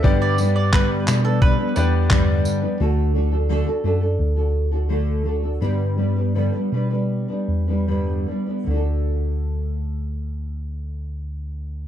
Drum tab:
TB |-x-x-x-x|--------|--------|--------|
CP |--xx--x-|--------|--------|--------|
BD |o-o-o-o-|--------|--------|--------|